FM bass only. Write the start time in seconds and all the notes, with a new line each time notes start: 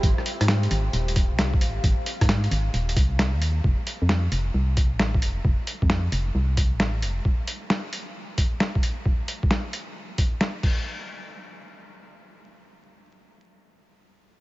0.03 G#1
0.41 G#2
0.71 G#1
0.93 D#1
1.31 C2
1.61 G#1
1.84 G#1
2.21 G#2
2.51 G#1
2.74 D#1
2.96 C2
3.34 D#2
3.64 F1
4.02 F2
4.32 F1
4.54 C2
4.92 A1
5.22 F1
5.45 F1
5.82 F2
6.12 F1
6.35 C2
6.72 A1
7.02 F1